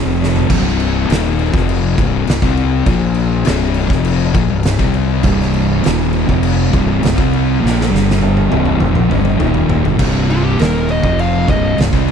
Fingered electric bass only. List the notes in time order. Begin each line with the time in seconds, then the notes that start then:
0.05 F1
0.50 C1
1.09 D#1
1.54 F1
1.99 C1
2.28 C1
2.42 C2
2.87 A#1
3.47 C1
3.90 F1
4.35 A#1
4.51 C1
4.80 C2
5.24 C1
5.86 D#1
6.29 F1
6.74 C1
7.04 C1
7.18 C2
7.63 A#1
7.93 G1
8.52 C1
8.81 F1
8.97 A#1
9.12 G1
9.41 D#1
9.85 G1
10.00 C1
10.59 D#1
11.04 F1
11.49 C1
11.78 C1
11.93 C2